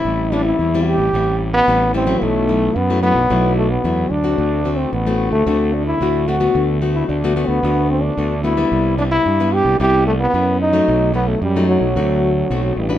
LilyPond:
<<
  \new Staff \with { instrumentName = "Trombone" } { \time 4/4 \key b \phrygian \tempo 4 = 111 e'8 d'16 e'8. g'4 r16 b8. c'8 | a4 b8 b4 a16 b8. d'8~ | d'8. c'16 b8. a8. d'16 e'8. fis'8~ | fis'16 r8 e'16 d'8. b8. c'16 d'8. e'8~ |
e'8 d'16 e'8. g'8 g'8 a16 b8. dis'8~ | dis'8 b16 a16 g8 fis2 g,8 | }
  \new Staff \with { instrumentName = "Nylon-string guitar" } { \time 4/4 \key b \phrygian << { <g c' e'>8 <g c' e'>8. <g c' e'>8. <g c' e'>8. r16 <g c' e'>16 r16 <g c' e'>16 <fis a e'>16~ | <fis a e'>8 <fis a e'>8 r16 <fis a e'>16 <fis a e'>16 r16 <fis a e'>8. r16 <fis a e'>8 r16 <a c' fis'>16~ | <a c' fis'>8 <a c' fis'>8 r16 <a c' fis'>8. <a c' fis'>8. r16 <a c' fis'>8 <a c' fis'>16 <a b fis'>16~ | <a b fis'>8 <a b fis'>8. <a b fis'>16 <a b fis'>8 <a b fis'>4 <a b fis'>16 r16 <a b fis'>16 <g b e'>16~ |
<g b e'>8 <g b e'>8 r16 <g b e'>8. <g b e'>8. r16 <b e'>8. <fis a dis'>16~ | <fis a dis'>8 <fis a dis'>8 r16 <fis a dis'>8. <a c' fis'>8. r16 <a c' fis'>8 r16 <d' fis' b'>16 | } \\ { a,4 e4 a,4 e4 | b,4 fis,4 b,4 fis,4 | d4 a,4 d4 a,4 | d4 d4 d4 d4 |
c4 g,4 c4 r4 | b,4 fis,4 d4 a,4 | } >> }
  \new Staff \with { instrumentName = "Fingered electric bass" } { \clef bass \time 4/4 \key b \phrygian a,,4 e,8. a,,16 a,,4 a,,4 | b,,4 fis,8. b,,16 b,,4 e,8 d,8 | d,4 a,,8. d,16 d,4 d,4 | d,4 d,8. d,16 d,4 d,4 |
c,4 g,8. c,16 c,4 fis,4 | b,,4 fis,8. b,,16 d,4 b,,8 a,,8 | }
>>